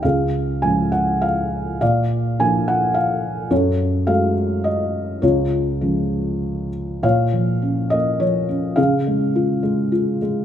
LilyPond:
<<
  \new Staff \with { instrumentName = "Felt piano" } { \time 3/4 \key des \major \tempo 4 = 103 << { f''4 aes''8 ges''8 f''4 | f''4 aes''8 ges''8 f''4 | des''4 f''4 ees''4 | des''2~ des''8 r8 |
\key bes \minor f''4. ees''8 des''4 | f''2~ f''8 r8 | } \\ { aes'4. r4. | d''4. r4. | a'4. r4. | f'2~ f'8 r8 |
des''4. r4. | aes'2~ aes'8 r8 | } >> }
  \new Staff \with { instrumentName = "Felt piano" } { \clef bass \time 3/4 \key des \major des,4 <f aes des'>2 | bes,4 <f bes d'>2 | ges,4 <aes a ges'>2 | des,4 <f aes des'>2 |
\key bes \minor bes,8 f8 des'8 bes8 f8 des'8 | des8 aes8 f'8 aes8 f'8 aes8 | }
>>